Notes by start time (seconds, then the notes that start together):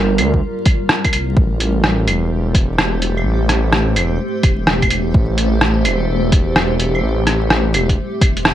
Already playing: G1 G3 F4 A#4
0.18 D2, closed hi-hat, claves
0.34 kick
0.66 kick, closed hi-hat, claves
0.89 cross-stick
1.04 kick, closed hi-hat, claves
1.13 C2, closed hi-hat, claves
1.37 A1 A3 G4 C5, kick
1.60 closed hi-hat
1.84 cross-stick
2.07 E1, closed hi-hat, claves
2.31 E1
2.55 kick, closed hi-hat
2.78 cross-stick, claves
3.02 closed hi-hat
3.17 claves
3.25 A1
3.49 cross-stick, closed hi-hat
3.73 cross-stick
3.96 E1, closed hi-hat, claves
4.43 E1, kick, closed hi-hat, claves
4.67 cross-stick
4.82 kick, closed hi-hat, claves
4.90 closed hi-hat, claves
5.14 A1, kick
5.38 closed hi-hat
5.61 cross-stick
5.85 E1, closed hi-hat, claves
6.09 E1
6.32 kick, closed hi-hat
6.56 cross-stick, claves
6.80 closed hi-hat
6.95 claves
7.03 A1
7.27 cross-stick, closed hi-hat
7.50 cross-stick
7.74 E1, closed hi-hat, claves
7.89 kick, closed hi-hat
8.21 E1, kick, closed hi-hat, claves
8.37 closed hi-hat
8.45 cross-stick